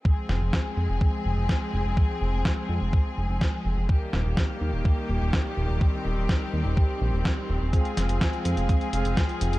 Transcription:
<<
  \new Staff \with { instrumentName = "Analog polysynth" } { \time 4/4 \key f \minor \tempo 4 = 125 r1 | r1 | r1 | r1 |
<c' f' aes' f''>2~ <c' f' aes' f''>8 <c' f' aes' f''>4. | }
  \new Staff \with { instrumentName = "String section" } { \time 4/4 \key f \minor << { <f aes aes'>1~ | <f aes aes'>1 | <ees g g'>1~ | <ees g g'>1 |
<f aes aes'>1 | } \\ { c'1~ | c'1 | bes1 | c'1~ |
c'1 | } >> }
  \new Staff \with { instrumentName = "Analog synth bass" } { \clef bass \time 4/4 \key f \minor r8 f,,16 f,,16 r8 f,16 f,,16 r8 f,,16 f,,16 r8 f,,16 f,,16 | r8 f,,16 f,,16 r8 f,16 f,,16 r8 f,,16 f,,16 r8 f,,16 f,,16 | r8 ees,,16 ees,,16 r8 ees,16 ees,,16 r8 ees,,16 ees,,16 r8 ees,,16 ees,,16 | r8 ees,,16 ees,,16 r8 ees,16 ees,,16 r8 bes,,16 ees,,16 r8 ees,,16 ees,,16 |
r8 f,,16 f,,16 r8 f,16 f,,16 r8 f,,16 f,,16 r8 f,,16 f,,16 | }
  \new DrumStaff \with { instrumentName = "Drums" } \drummode { \time 4/4 bd8 sn8 <bd sn>4 bd4 <bd sn>4 | bd4 <bd sn>4 bd4 <bd sn>4 | bd8 sn8 <bd sn>4 bd4 <bd sn>4 | bd4 <bd sn>4 bd4 <bd sn>4 |
<hh bd>16 hh16 <hh sn>16 hh16 <hh bd sn>16 hh16 hh16 hh16 <hh bd>16 hh16 hh16 hh16 <hh bd sn>16 hh16 hh16 hh16 | }
>>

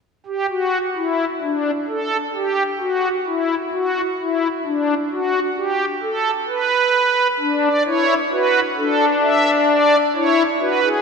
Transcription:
\new Staff \with { instrumentName = "Pipe organ" } { \time 4/4 \key d \mixolydian \tempo 4 = 65 << { r16 g'16 fis'8 e'8 d'8 a'8 g'8 fis'8 e'8 | fis'8 e'8 d'8 fis'8 g'8 a'8 b'4 | r16 d''16 cis''8 b'8 a'8 e''8 d''8 cis''8 b'8 | } \\ { r1 | r1 | d'8 e'8 fis'8 d'4. e'8 fis'16 gis'16 | } >> }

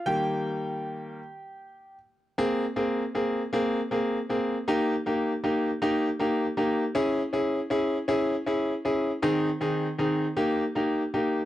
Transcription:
<<
  \new Staff \with { instrumentName = "Grand piano" } { \time 6/8 \key aes \major \tempo 4. = 52 <g' g''>2~ <g' g''>8 r8 | <bes c' aes'>8 <bes c' aes'>8 <bes c' aes'>8 <bes c' aes'>8 <bes c' aes'>8 <bes c' aes'>8 | <bes ees' g'>8 <bes ees' g'>8 <bes ees' g'>8 <bes ees' g'>8 <bes ees' g'>8 <bes ees' g'>8 | <des' fes' aes'>8 <des' fes' aes'>8 <des' fes' aes'>8 <des' fes' aes'>8 <des' fes' aes'>8 <des' fes' aes'>8 |
<ees c' ees' aes'>8 <ees c' ees' aes'>8 <ees c' ees' aes'>8 <bes ees' g'>8 <bes ees' g'>8 <bes ees' g'>8 | }
  \new Staff \with { instrumentName = "Grand piano" } { \clef bass \time 6/8 \key aes \major <ees g bes>4. r4. | r2. | r2. | r2. |
r2. | }
>>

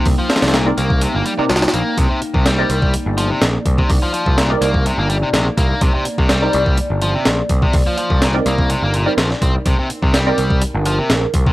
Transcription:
<<
  \new Staff \with { instrumentName = "Analog synth pad" } { \time 4/4 \key c \minor \tempo 4 = 125 << { g''1 | d''1~ | d''1~ | d''1~ |
d''1 | bes'1 | } \\ { <bes ees'>1~ | <bes ees'>1~ | <bes ees'>1~ | <bes ees'>1~ |
<bes ees'>1~ | <bes ees'>1 | } >> }
  \new Staff \with { instrumentName = "Synth stab" } { \time 4/4 \key c \minor r4 r16 <c' ees' bes' d''>8 r4 <c' ees' bes' d''>16 r4 | r4 r16 <c' ees' bes' d''>8 r2 r16 | r4 r16 <c' ees' bes' d''>8 r2 r16 | r4 r16 <c' ees' bes' d''>8 r2 r16 |
r4 r16 <c' ees' bes' d''>8 r4 <c' ees' bes' d''>16 r4 | r4 r16 <c' ees' bes' d''>8 r2 r16 | }
  \new Staff \with { instrumentName = "Overdriven electric guitar" } { \clef bass \time 4/4 \key c \minor r16 f16 f8 bes,16 r16 bes8 c16 bes16 g16 c16 c16 r16 bes8 | c16 c16 r16 c16 g4 r8 f16 c16 r8. c16 | r16 f16 f8 bes,16 r16 bes8 c16 bes16 g16 c16 c16 r16 bes8 | c16 c16 r16 c16 g4 r8 f16 c16 r8. c16 |
r16 f16 f8 bes,16 r16 bes8 c16 bes16 bes,16 g16 f16 r16 c'16 r16 | c16 c16 r16 c16 g4 r8 f16 c16 r8. c16 | }
  \new Staff \with { instrumentName = "Picked electric bass" } { \clef bass \time 4/4 \key c \minor c,16 r8 c,8 r16 c,8 r16 g,,16 r8 c,16 r16 bes,,16 r16 | c,16 r8 c,8 r16 c,8 r16 g,,8 r16 bes,,16 r16 c,16 r16 | c,16 r8 c,8 r16 c,8 r16 g,,8 r16 bes,,16 r16 c,16 r16 | c,16 r8 c,8 r16 c,8 r16 g,,8 r16 bes,,16 r16 c,16 r16 |
c,16 r8 c,8 r16 c,8 r16 g,,8 r16 bes,,16 r16 c,16 r16 | c,16 r8 c,8 r16 c,8 r16 g,,8 r16 bes,,16 r16 c,16 r16 | }
  \new DrumStaff \with { instrumentName = "Drums" } \drummode { \time 4/4 <hho bd>8 <hh sn>32 <hh sn>32 <hh sn>32 <hh sn>32 <hh sn>8 hh16 bd16 hh8 hh8 <hh sn>32 <hh sn>32 <hh sn>32 <hh sn>32 hh8 | <hh bd>8 hh16 bd16 <hh sn>8 hh16 bd16 hh8 hh8 <hh sn>8 <hh bd>16 bd16 | <hho bd>8 hh16 bd16 <hh sn>8 hh16 bd16 hh8 hh8 <hh sn>8 <hh bd>8 | <hh bd>8 hh16 bd16 <hh sn>8 hh16 bd16 hh8 hh8 <hh sn>8 <hh bd>16 bd16 |
<hho bd>8 hh16 bd16 <hh sn>8 hh16 bd16 hh8 hh8 <hh sn>16 sn16 <hh bd>8 | <hh bd>8 hh16 bd16 <hh sn>8 hh16 bd16 hh8 hh8 <hh sn>8 <hh bd>16 bd16 | }
>>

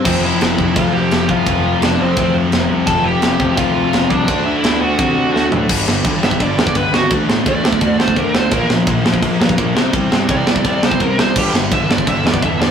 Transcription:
<<
  \new Staff \with { instrumentName = "Lead electric guitar" } { \time 4/4 \key f \lydian \tempo 4 = 170 <c' c''>8 <e' e''>4. <f' f''>8 <g' g''>4 <f' f''>8~ | <f' f''>4 <d' d''>8 <c' c''>4 r4. | <a' a''>8 <g' g''>4. <f' f''>4. <d' d''>8~ | <d' d''>8 <e' e''>4 <fis' fis''>2 r8 |
\key c \lydian r4. e''8 d''4 b'8 fis'8 | r4 d''4. c''8 bes'8 c''8 | bes'8 r2. r8 | r4 d''4. c''8 bes'8 c''8 |
g'8 r8 e''8 d''8 e''8 d''8 e''8 d''8 | }
  \new Staff \with { instrumentName = "Distorted electric guitar" } { \clef bass \time 4/4 \key f \lydian <f, c f>4 <f, c f>8 <f, c f>8 <f, c f>4 <f, c f>8 <f, c f>8 | <f, c f>4 <f, c f>8 <f, c f>8 <f, c f>4 <f, c f>8 <f, c f>8 | <f, c f>4 <f, c f>8 <f, c f>8 <f, c f>4 <f, c f>8 <f, c f>8 | <d a d'>4 <d a d'>8 <d a d'>8 <d a d'>4 <d a d'>8 <d a d'>8 |
\key c \lydian <g, d g>8 <g, d g>8 <g, d g>8 <g, d g>8 <g, d g>8 <g, d g>8 <g, d g>8 <g, d g>8 | <d a d'>8 <d a d'>8 <d a d'>8 <d a d'>8 <d a d'>8 <d a d'>8 <d a d'>8 <d a d'>8 | <bes, f bes>8 <bes, f bes>8 <bes, f bes>8 <bes, f bes>8 <bes, f bes>8 <bes, f bes>8 <bes, f bes>8 <c g c'>8 | <c g c'>8 <c g c'>8 <c g c'>8 <c g c'>8 <c g c'>8 <c g c'>8 <c g c'>8 <c g c'>8 |
<g, d g>8 <g, d g>8 <g, d g>8 <g, d g>8 <g, d g>8 <g, d g>8 <g, d g>8 <g, d g>8 | }
  \new Staff \with { instrumentName = "Overdriven electric guitar" } { \clef bass \time 4/4 \key f \lydian <f, c f>1 | <f, c f>1 | <f, c f>1 | <d a d'>1 |
\key c \lydian <g, d g>8 <g, d>8 <g, d>8 <g, d>8 <g, d>8 <g, d>8 <g, d>8 <g, d>8 | <d a d'>8 <d a>8 <d a>8 <d a>8 <d a>8 <d a>8 <d a>8 <d a>8 | <bes, f bes>8 <bes, f>8 <bes, f>8 <bes, f>8 <bes, f>8 <bes, f>8 <bes, f>8 <c g c'>8 | <c g>8 <c g>8 <c g>8 <c g>8 <c g>8 <c g>8 <c g>8 <c g>8 |
<g, d g>8 <g, d>8 <g, d>8 <g, d>8 <g, d>8 <g, d>8 <g, d>8 <g, d>8 | }
  \new Staff \with { instrumentName = "Overdriven electric guitar" } { \clef bass \time 4/4 \key f \lydian <f, c f>2.~ <f, c f>8 <f, c f>8 | <f, c f>2.~ <f, c f>8 <f, c f>8 | <f, c f>2.~ <f, c f>8 <f, c f>8 | <d a d'>2.~ <d a d'>8 <d a d'>8 |
\key c \lydian <g, d g>8 <g, d>8 <g, d>8 <g, d>8 <g, d>8 <g, d>8 <g, d>8 <g, d>8 | <d a d'>8 <d a>8 <d a>8 <d a>8 <d a>8 <d a>8 <d a>8 <d a>8 | <bes, f bes>8 <bes, f>8 <bes, f>8 <bes, f>8 <bes, f>8 <bes, f>8 <bes, f>8 <c g c'>8 | <c g>8 <c g>8 <c g>8 <c g>8 <c g>8 <c g>8 <c g>8 <c g>8 |
<g, d g>8 <g, d>8 <g, d>8 <g, d>8 <g, d>8 <g, d>8 <g, d>8 <g, d>8 | }
  \new Staff \with { instrumentName = "Picked electric bass" } { \clef bass \time 4/4 \key f \lydian f,,4 f,,8 f,,8 d,4 f,,8 c,8 | f,,4 f,,8 f,,8 d,4 f,,8 c,8 | f,,4 f,,8 f,,8 d,4 f,,8 c,8 | d,4 d,8 d,8 c4 d,8 a,8 |
\key c \lydian g,,8 g,,8 g,,8 g,,8 g,,8 e,8 cis,4 | d,8 a,8 d,8 d,8 d,8 d,8 d,8 d,8 | bes,,8 bes,,8 bes,,8 bes,,8 bes,,8 g,8 bes,,8 c,8 | c,8 g,8 c,8 c,8 c,8 c,8 c,8 c,8 |
g,,8 g,,8 g,,8 g,,8 g,,8 e,8 e,4 | }
  \new DrumStaff \with { instrumentName = "Drums" } \drummode { \time 4/4 <cymc bd>4 <cymr sn>8 bd8 <bd cymr>4 <cymr sn>8 bd8 | <bd cymr>4 <cymr sn>4 <bd cymr>4 <cymr sn>4 | <bd cymr>4 <cymr sn>8 bd8 <bd cymr>4 <cymr sn>8 bd8 | <bd cymr>4 <cymr sn>4 <bd cymr>4 sn8 tomfh8 |
<cymc bd>8 sn8 <bd cymr>8 sn16 bd16 <bd cymr>8 sn16 bd16 <bd cymr>8 sn8 | <bd cymr>8 sn8 <bd cymr>8 sn16 bd16 <bd cymr>8 sn16 bd16 <bd cymr>8 sn8 | <bd cymr>8 sn8 <bd cymr>8 sn16 bd16 <bd cymr>8 sn16 bd16 <bd cymr>8 sn8 | <bd cymr>8 sn8 <bd cymr>8 sn16 bd16 <bd cymr>8 sn16 bd16 <bd cymr>8 sn8 |
<cymc bd>8 sn8 <bd cymr>8 sn16 bd16 <bd cymr>8 sn16 bd16 <bd cymr>8 sn8 | }
>>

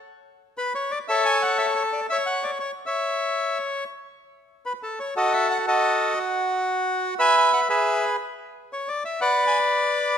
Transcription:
\new Staff \with { instrumentName = "Bandoneon" } { \time 4/4 \key a \major \tempo 4 = 118 << { r4 \tuplet 3/2 { b'8 cis''8 d''8 e''8 gis''8 fis''8 e''8 cis''8 d''8 } | \tuplet 3/2 { e''8 fis''8 d''8 } cis''8 e''4. r4 | r4 \tuplet 3/2 { b'8 a'8 cis''8 dis''8 e''8 fis''8 } dis''4 | r2 \tuplet 3/2 { gis''8 gis''8 fis''8 } e''8. r16 |
r4 \tuplet 3/2 { cis''8 d''8 e''8 } fis''8 gis''8 r4 | } \\ { r2 <a' cis''>2 | cis''4. cis''2 r8 | r2 <fis' a'>4 <fis' a'>4~ | <fis' a'>2 <b' e''>4 <gis' b'>4 |
r2 <b' d''>2 | } >> }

